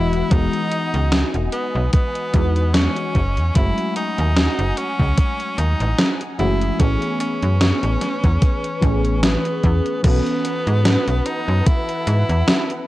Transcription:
Already playing: E1 E3 G#3 B3 E4 F#4 D#5 F#5 G#5
0.13 closed hi-hat
0.30 E1 E3 G#3 B3 D#4 F#4, kick, closed hi-hat
0.53 closed hi-hat
0.72 closed hi-hat
0.94 C#2, closed hi-hat
1.12 snare, closed hi-hat
1.34 E1, closed hi-hat
1.52 B3, closed hi-hat
1.75 B1
1.93 B3, kick, closed hi-hat
2.15 closed hi-hat
2.33 E2 E3 G#3 B3 D#4 F#4, kick, closed hi-hat
2.56 closed hi-hat
2.74 C#4, snare, closed hi-hat
2.96 closed hi-hat
3.15 F#1 F#5, kick, closed hi-hat
3.37 E2, closed hi-hat
3.54 F#1 F#3 G#3 A3 C#4 E4 F#4, kick, closed hi-hat
3.78 closed hi-hat
3.96 D#4, closed hi-hat
4.18 D#2, closed hi-hat
4.36 snare, closed hi-hat
4.59 F#1, closed hi-hat
4.77 C#4 D#6, closed hi-hat
5.00 C#2, kick
5.18 kick, closed hi-hat
5.40 closed hi-hat
5.58 D#2 D#4, closed hi-hat
5.80 A1, closed hi-hat
5.99 snare, closed hi-hat
6.21 closed hi-hat
6.38 F#1 E3 G#3 A3 C#4 E4 F#4, closed hi-hat
6.61 closed hi-hat
6.78 A1 E3 A3 B3 C#4 G#4 B4 C#6, kick, closed hi-hat
7.02 closed hi-hat
7.20 C#4, closed hi-hat
7.42 F#2, closed hi-hat
7.61 snare, closed hi-hat
7.83 A1, closed hi-hat
8.01 snare, closed hi-hat
8.24 E2, kick, closed hi-hat
8.42 kick, closed hi-hat
8.64 closed hi-hat
8.81 A1 E3 A3 B3 C#4 G#4, kick, closed hi-hat
9.05 closed hi-hat
9.23 B3, snare, closed hi-hat
9.45 closed hi-hat
9.63 E2, kick, closed hi-hat
9.86 closed hi-hat
10.02 B1 E3 B3 C#4 F#4 A4 B4 F#5 A5, kick, closed hi-hat, crash
10.26 closed hi-hat
10.45 closed hi-hat
10.67 G#2, closed hi-hat
10.85 snare, closed hi-hat
11.08 B1, closed hi-hat
11.26 D#4, closed hi-hat
11.48 F#2
11.66 E4, kick, closed hi-hat
11.89 closed hi-hat
12.07 G#2, closed hi-hat
12.29 E2, closed hi-hat
12.48 snare, closed hi-hat
12.70 closed hi-hat

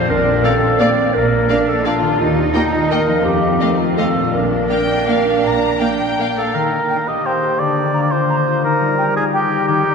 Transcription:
Already playing: A#2 F3 D4
0.01 F4
0.05 D4 A#4
0.10 A#1 A#4
0.43 A#3 C4 A4 D5 F5
0.79 A#3 D5 F5
1.14 A#1 A#3 A#4
1.49 A#3 D4 D5 F5
1.67 A4
1.84 A#3 D4 F4 D5 F5
2.01 D#3
2.05 D#4
2.10 G4
2.14 A#4
2.19 D#2 D#4 F4
2.54 A#3 D#4 D#5 G5
2.90 A#3 A#4 D#5 G5
3.07 F3
3.12 D#4
3.16 F4
3.21 C4 G4 A4
3.25 F2
3.60 A3 D#5 F5
3.79 F4
3.97 A3 A4 D#5 F5
4.15 A#2
4.19 D4
4.24 F4
4.28 A#4
4.33 A#1 D4 A#4
4.69 A#3 F5 G5
5.08 A#3 F5
5.44 A#1 A#5
5.80 A#3 F5 G5
6.19 A#3 F5
6.37 A4 F5
6.54 D#3 D#4 A#4
6.72 D#4
6.90 A#3 G5
7.08 G4 D#5
7.26 A#4 C5 G5
7.43 G4
7.59 D3 D4 D5
7.76 D4
7.94 A#3 A#5
8.12 F4 C5
8.30 A#4 A#5
8.47 F4
8.64 D#3 D#4 A#4
8.81 G3
8.98 D#4 G5
9.17 G#4 A#4
9.34 G4 G5
9.52 A#4
9.68 D#3 D#4 G4
9.84 G3

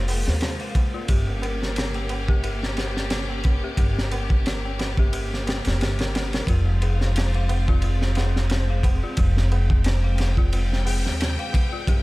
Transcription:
Already playing: F1 G#3 A#3 F4 G#4 C5 F5
0.08 G#4, open hi-hat, tabla na
0.27 D#2, snare, tabla na
0.41 C5, snare, ride, tabla na
0.60 F5, ride, tabla na
0.75 kick, ride, tabla na
0.93 F4, tabla na
1.08 G1 C#4 G4, kick, ride, tabla na
1.27 tabla na
1.42 A#4, ride, tabla na
1.61 snare, tabla na
1.76 C#5, snare, ride, tabla na
1.94 G5, ride, tabla na
2.09 ride, tabla na
2.28 G4, kick, tabla na
2.43 G4, ride, tabla na
2.63 snare
2.77 A#4, snare, ride, tabla na
2.96 snare, tabla na
3.10 C#5, snare, ride, tabla na
3.29 G5, tabla na
3.44 kick, ride, tabla na
3.64 G4, tabla na
3.77 G1 G4, kick, ride, tabla na
3.97 snare, tabla na
4.11 A#4, ride, tabla na
4.30 kick, tabla na
4.46 C#5, snare, ride, tabla na
4.64 G5, tabla na
4.79 snare, ride, tabla na
4.97 G4, kick, tabla na
5.13 G4, ride, tabla na
5.34 snare
5.47 G5, snare, ride, tabla na
5.65 F1, snare, ride, tabla na
5.80 G1 G4, snare, ride, tabla na
5.99 A#4, snare, ride, tabla na
6.15 snare, ride, tabla na
6.33 A#4, snare, ride, tabla na
6.47 F1 G#3 C4 F4, kick, ride, tabla na
6.66 tabla na
6.82 G#4, ride, tabla na
7.01 snare, tabla na
7.16 C5, snare, ride, tabla na
7.34 F5, ride, tabla na
7.49 ride, tabla na
7.68 F4, kick, tabla na
7.82 F4, ride, tabla na
8.02 snare
8.15 G#4, snare, ride, tabla na
8.36 snare, tabla na
8.50 C5, snare, ride, tabla na
8.70 F5, tabla na
8.83 kick, ride, tabla na
9.02 F4, tabla na
9.17 F1 F4 G5, kick, ride, tabla na
9.37 snare, tabla na
9.52 G#4, ride, tabla na
9.70 kick, tabla na
9.84 C5, snare, ride, tabla na
10.04 F5, tabla na
10.18 snare, ride, tabla na
10.37 F4, kick, tabla na
10.53 F4, ride, tabla na
10.73 snare
10.85 G#4, open hi-hat, tabla na
11.05 D#2, snare, tabla na
11.20 C5, snare, ride, tabla na
11.38 F5, ride, tabla na
11.53 kick, ride, tabla na
11.73 F4
11.87 G1 A#3 C#4 G4, kick, ride, tabla na

